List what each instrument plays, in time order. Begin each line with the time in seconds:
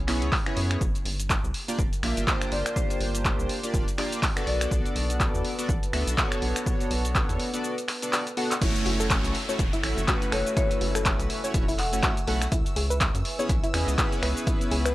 Already playing: analog synth bass B1
0.08 analog polysynth B3 C#4 E4 G#4 C#5, finger snap, clap, open hi-hat
0.22 analog synth bass C#2, closed hi-hat
0.32 kick, clap, open hi-hat
0.46 analog polysynth B3 C#4 E4 G#4 C#5, finger snap, closed hi-hat
0.57 analog synth bass F#2, open hi-hat
0.71 finger snap, closed hi-hat
0.81 analog synth bass G1, analog synth pad A#4 F5 G5, kick, cabasa
0.95 closed hi-hat, cabasa
1.05 analog synth bass G1, open hi-hat
1.20 closed hi-hat, cabasa
1.30 kick, clap, cabasa
1.44 analog synth bass C2, cabasa
1.54 open hi-hat
1.68 analog polysynth A#3 D4 F4 G4 D5, closed hi-hat, cabasa
1.79 analog synth bass F1, kick, cabasa
1.93 closed hi-hat, cabasa
2.03 analog synth bass A#1, analog polysynth A#3 D4 F4 G4 E5, finger snap, open hi-hat
2.17 analog synth bass G1, closed hi-hat, cabasa
2.27 analog polysynth A#3 D4 F4 G4 C5, kick, clap, cabasa
2.42 finger snap, closed hi-hat, cabasa
2.52 analog synth bass G1, marimba D5, open hi-hat
2.66 finger snap, closed hi-hat, cabasa
2.76 marimba C5, kick, cabasa
2.90 marimba C5, closed hi-hat, cabasa
3.01 analog synth bass G1, open hi-hat
3.15 closed hi-hat, cabasa
3.25 kick, clap, cabasa
3.39 analog synth bass C2, cabasa
3.49 open hi-hat
3.63 analog polysynth A#3 D4 F4 G4 D5, closed hi-hat, cabasa
3.74 analog synth bass F1, kick, cabasa
3.88 closed hi-hat, cabasa
3.98 analog polysynth A#3 D4 F4 G4 D5, finger snap, clap, open hi-hat
4.12 closed hi-hat, cabasa
4.23 kick, clap, open hi-hat, cabasa
4.36 analog polysynth B3 D4 F#4 A4 D5, finger snap, closed hi-hat, cabasa
4.47 analog synth bass B1, analog synth pad B4 F#5 A5, marimba D5, open hi-hat
4.61 finger snap, closed hi-hat, cabasa
4.71 analog synth bass B1, kick, cabasa
4.86 closed hi-hat, cabasa
4.96 analog synth bass B1, open hi-hat
5.10 closed hi-hat, cabasa
5.20 kick, clap, cabasa
5.34 analog synth bass E2, cabasa
5.45 open hi-hat
5.58 analog polysynth B3 D4 F#4 A4 D5, closed hi-hat, cabasa
5.69 analog synth bass A1, kick, cabasa
5.83 closed hi-hat, cabasa
5.93 analog synth bass D2, analog polysynth B3 D4 F#4 A4 E5, finger snap, open hi-hat
6.07 analog synth bass B1, closed hi-hat, cabasa
6.17 analog polysynth B3 D4 F#4 A4 C#5, kick, clap, cabasa
6.32 finger snap, closed hi-hat, cabasa
6.42 analog synth bass B1, open hi-hat
6.56 finger snap, closed hi-hat, cabasa
6.66 kick, cabasa
6.80 closed hi-hat, cabasa
6.91 analog synth bass B1, open hi-hat
7.05 closed hi-hat, cabasa
7.15 kick, clap, cabasa
7.29 analog synth bass E2, closed hi-hat, cabasa
7.40 open hi-hat
7.53 analog polysynth B3 D4 F#4 A4 D5, closed hi-hat, cabasa
7.64 cabasa
7.78 closed hi-hat, cabasa
7.88 finger snap, clap, open hi-hat
8.02 analog polysynth B3 D4 F#4 A4 D5, closed hi-hat, cabasa
8.13 clap, open hi-hat, cabasa
8.27 closed hi-hat, cabasa
8.37 analog polysynth B3 D4 F#4 A4 F#5, open hi-hat
8.51 clap, closed hi-hat, cabasa
8.61 analog synth bass F#1, analog polysynth A3 C#4 E4 F#4 C#5, synth arpeggio sound E4, analog synth pad A4 E5 F#5 C#6, string machine E6, kick, closed hi-hat, crash, downlifter, cabasa
8.76 closed hi-hat, cabasa
8.86 analog synth bass F#1, synth arpeggio sound F#4, open hi-hat
9.00 synth arpeggio sound A4, closed hi-hat, cabasa
9.10 kick, clap, closed hi-hat, cabasa
9.24 analog synth bass B1, closed hi-hat, cabasa
9.35 open hi-hat
9.48 analog polysynth A3 C#4 E4 F#4 C#5, synth arpeggio sound C#5, closed hi-hat, cabasa
9.59 analog synth bass E1, kick, closed hi-hat, cabasa
9.73 synth arpeggio sound E4, closed hi-hat, cabasa
9.83 analog synth bass A1, analog polysynth A3 C#4 E4 F#4 E5, finger snap, open hi-hat
9.98 analog synth bass F#1, closed hi-hat, cabasa
10.07 analog polysynth A3 C#4 E4 F#4 B4, synth arpeggio sound F#4, kick, clap, closed hi-hat, cabasa
10.22 closed hi-hat, cabasa
10.32 analog synth bass F#1, synth arpeggio sound A4, marimba C#5, finger snap, open hi-hat
10.46 closed hi-hat, cabasa
10.57 synth arpeggio sound E4, marimba C#5, analog synth pad G#5, kick, closed hi-hat, cabasa
10.71 closed hi-hat, cabasa
10.81 analog synth bass F#1, synth arpeggio sound F#4, open hi-hat
10.95 synth arpeggio sound A4, finger snap, closed hi-hat, cabasa
11.05 kick, clap, closed hi-hat, cabasa
11.20 analog synth bass B1, closed hi-hat, cabasa
11.30 open hi-hat
11.44 analog polysynth A3 C#4 E4 F#4 C#5, synth arpeggio sound C#5, closed hi-hat, cabasa
11.54 analog synth bass E1, kick, closed hi-hat, cabasa
11.68 synth arpeggio sound E4, open hi-hat, cabasa
11.79 marimba F#5, clap, open hi-hat
11.93 analog synth bass F#1, analog polysynth A3 C#4 E4 F#4 C#5, marimba F#5, closed hi-hat, cabasa
12.03 synth arpeggio sound F#4, kick, clap, closed hi-hat, cabasa
12.17 closed hi-hat, cabasa
12.27 analog synth bass B1, analog polysynth A3 C#4 E4 F#4 F#5, synth arpeggio sound A4, open hi-hat
12.42 finger snap, closed hi-hat, cabasa
12.52 analog synth bass C#2, synth arpeggio sound E4, analog synth pad B4 G#5, kick, closed hi-hat, cabasa
12.66 closed hi-hat, cabasa
12.76 analog synth bass C#2, synth arpeggio sound G#4, open hi-hat
12.90 synth arpeggio sound B4, closed hi-hat, cabasa
13.01 kick, clap, closed hi-hat, cabasa
13.15 analog synth bass F#2, closed hi-hat, cabasa
13.25 open hi-hat
13.39 analog polysynth B3 C#4 E4 G#4 C#5, synth arpeggio sound C#5, closed hi-hat, cabasa
13.49 analog synth bass B1, kick, closed hi-hat, cabasa
13.63 synth arpeggio sound E4, closed hi-hat, cabasa
13.73 analog synth bass E2, analog polysynth B3 C#4 E4 G#4 D#5, finger snap, open hi-hat
13.88 analog synth bass C#2, closed hi-hat, cabasa
13.98 analog polysynth B3 C#4 E4 G#4 B4, synth arpeggio sound G#4, kick, clap, closed hi-hat, cabasa
14.12 closed hi-hat, cabasa
14.22 analog synth bass C#2, synth arpeggio sound B4, finger snap, open hi-hat
14.37 closed hi-hat, cabasa
14.47 synth arpeggio sound E4, analog synth pad F#5, kick, closed hi-hat, cabasa
14.61 closed hi-hat, cabasa
14.71 analog synth bass C#2, synth arpeggio sound G#4, open hi-hat
14.85 synth arpeggio sound B4, finger snap, closed hi-hat, cabasa